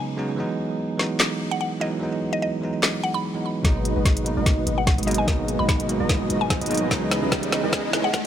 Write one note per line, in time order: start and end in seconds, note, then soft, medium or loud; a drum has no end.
0.00 0.17 C#3 medium
0.00 0.17 F#3 medium
0.00 0.18 G#3 medium
0.00 0.18 B3 medium
0.00 0.19 D#4 loud
0.17 0.35 C#3 medium
0.17 0.36 F#3 medium
0.17 0.36 G#3 medium
0.17 0.36 B3 medium
0.17 0.36 D#4 loud
0.36 0.96 E3 medium
0.36 0.97 F#3 medium
0.36 0.97 G#3 medium
0.36 0.98 B3 medium
0.40 0.98 D#4 loud
0.97 1.78 E3 medium
0.97 1.78 F#3 medium
0.97 1.79 G#3 medium
0.97 1.79 B3 medium
0.97 1.80 D#4 medium
0.97 snare medium
1.20 snare loud
1.20 clap medium
1.51 1.57 F#5 medium
1.61 1.68 F#5 medium
1.80 1.98 E3 medium
1.80 1.99 F#3 medium
1.80 1.99 G#3 medium
1.80 1.99 B3 medium
1.80 2.00 D#4 loud
1.80 1.90 D#5 medium
1.99 2.59 E3 medium
1.99 2.60 F#3 medium
1.99 2.60 G#3 medium
1.99 2.61 B3 medium
1.99 2.61 D#4 loud
2.33 2.39 D#5 medium
2.42 2.49 D#5 medium
2.61 3.32 E3 medium
2.61 3.32 F#3 medium
2.61 3.33 G#3 medium
2.61 3.33 B3 medium
2.65 3.34 D#4 medium
2.83 snare loud
2.83 clap medium
3.04 3.12 F#5 medium
3.14 3.44 B5 medium
3.34 3.53 E3 medium
3.34 3.54 F#3 medium
3.34 3.54 G#3 medium
3.34 3.54 B3 medium
3.34 3.54 D#4 medium
3.62 3.94 G#1 medium
3.62 4.23 B2 medium
3.62 4.23 F#3 medium
3.62 4.24 G#3 medium
3.62 3.94 G#3 medium
3.62 4.24 A#3 medium
3.62 3.94 D#4 medium
3.62 3.94 F#4 medium
3.62 3.94 B4 medium
3.62 3.94 D#5 medium
3.62 kick loud
3.62 snare soft
3.62 closed hi-hat medium
3.62 riser medium
3.66 4.25 D#4 loud
3.85 closed hi-hat medium
3.96 4.35 G#1 loud
3.96 4.34 G#3 medium
3.96 4.34 D#4 medium
3.96 4.34 F#4 medium
3.96 4.34 B4 medium
3.96 4.34 D#5 medium
4.05 kick medium
4.05 snare soft
4.05 closed hi-hat medium
4.17 closed hi-hat medium
4.24 5.04 B2 medium
4.24 5.05 F#3 medium
4.24 5.05 G#3 medium
4.24 5.06 A#3 medium
4.24 closed hi-hat medium
4.28 5.06 D#4 medium
4.37 4.65 G#1 loud
4.37 4.64 G#3 loud
4.37 4.64 D#4 medium
4.37 4.64 F#4 medium
4.37 4.64 B4 medium
4.37 4.64 D#5 loud
4.46 kick loud
4.46 snare soft
4.46 closed hi-hat medium
4.67 4.96 G#1 medium
4.67 4.80 G#3 medium
4.67 4.80 D#4 medium
4.67 4.80 F#4 medium
4.67 4.80 B4 medium
4.67 4.80 D#5 medium
4.67 closed hi-hat medium
4.78 4.84 F#5 medium
4.87 4.94 F#5 medium
4.87 kick loud
4.87 snare medium
4.87 closed hi-hat medium
4.98 5.26 G#1 medium
4.98 5.26 G#3 loud
4.98 5.26 D#4 medium
4.98 5.26 F#4 medium
4.98 5.26 B4 medium
4.98 5.26 D#5 loud
4.98 closed hi-hat medium
5.03 5.25 B2 medium
5.03 5.25 F#3 medium
5.03 closed hi-hat medium
5.07 5.26 G#3 medium
5.07 5.26 A#3 medium
5.07 5.26 D#4 loud
5.07 5.16 D#5 medium
5.07 closed hi-hat medium
5.11 closed hi-hat medium
5.14 5.34 G#5 medium
5.14 closed hi-hat medium
5.26 5.86 B2 medium
5.26 5.86 F#3 medium
5.26 5.57 G#3 medium
5.26 5.87 G#3 medium
5.26 5.87 A#3 medium
5.26 5.57 D#4 medium
5.26 5.57 F#4 medium
5.26 5.57 B4 medium
5.26 5.57 D#5 medium
5.26 kick loud
5.26 snare medium
5.26 closed hi-hat medium
5.30 5.88 D#4 loud
5.48 closed hi-hat medium
5.59 5.98 G#1 loud
5.59 5.98 G#3 medium
5.59 5.98 D#4 medium
5.59 5.98 F#4 medium
5.59 5.98 B4 medium
5.59 5.98 D#5 medium
5.59 5.65 B5 medium
5.69 5.76 B5 medium
5.69 kick loud
5.69 snare medium
5.69 closed hi-hat medium
5.80 closed hi-hat medium
5.87 6.68 B2 medium
5.87 6.68 F#3 medium
5.87 6.69 G#3 medium
5.87 6.69 A#3 medium
5.87 closed hi-hat medium
5.91 6.70 D#4 medium
6.00 6.28 G#1 medium
6.00 6.28 G#3 loud
6.00 6.28 D#4 medium
6.00 6.28 F#4 medium
6.00 6.28 B4 medium
6.00 6.28 D#5 loud
6.09 kick medium
6.09 snare medium
6.09 closed hi-hat medium
6.30 6.59 G#1 loud
6.30 6.43 G#3 medium
6.30 6.43 D#4 medium
6.30 6.43 F#4 medium
6.30 6.43 B4 medium
6.30 6.43 D#5 medium
6.30 closed hi-hat medium
6.41 6.47 G#5 medium
6.50 6.57 G#5 medium
6.50 kick loud
6.50 snare medium
6.50 closed hi-hat medium
6.61 6.89 G#1 loud
6.61 6.89 G#3 medium
6.61 6.89 D#4 medium
6.61 6.89 F#4 medium
6.61 6.89 B4 medium
6.61 6.89 D#5 loud
6.61 closed hi-hat medium
6.66 6.88 B2 loud
6.66 6.89 F#3 medium
6.66 closed hi-hat medium
6.71 6.89 G#3 medium
6.71 6.89 A#3 medium
6.71 6.89 D#4 loud
6.71 closed hi-hat medium
6.74 closed hi-hat medium
6.77 closed hi-hat medium
6.89 7.20 C#2 loud
6.89 7.49 C#3 medium
6.89 7.50 E3 medium
6.89 7.50 G#3 medium
6.89 7.20 G#3 medium
6.89 7.51 B3 medium
6.89 7.20 C#4 medium
6.89 7.20 E4 medium
6.89 7.20 B4 medium
6.89 7.20 D#5 medium
6.89 kick loud
6.89 snare medium
6.89 closed hi-hat medium
6.93 7.51 D#4 loud
7.11 snare medium
7.11 closed hi-hat medium
7.22 7.61 C#2 loud
7.22 7.61 G#3 medium
7.22 7.61 C#4 medium
7.22 7.61 E4 medium
7.22 7.61 B4 medium
7.22 7.61 D#5 medium
7.32 kick loud
7.32 snare medium
7.32 closed hi-hat medium
7.43 closed hi-hat medium
7.50 8.27 C#3 medium
7.50 8.27 E3 medium
7.50 8.27 G#3 medium
7.50 8.27 B3 medium
7.50 snare medium
7.50 closed hi-hat medium
7.54 8.27 D#4 medium
7.63 7.91 C#2 medium
7.63 7.91 G#3 medium
7.63 7.91 C#4 medium
7.63 7.91 E4 medium
7.63 7.91 B4 medium
7.63 7.91 D#5 loud
7.73 kick loud
7.73 snare medium
7.73 closed hi-hat medium
7.93 8.22 C#2 medium
7.93 8.07 G#3 medium
7.93 8.06 C#4 medium
7.93 8.07 E4 medium
7.93 8.07 B4 medium
7.93 8.07 D#5 medium
7.93 snare medium
7.93 closed hi-hat medium
8.04 8.10 F#5 medium
8.13 8.21 F#5 medium
8.13 kick loud
8.13 snare medium
8.13 closed hi-hat medium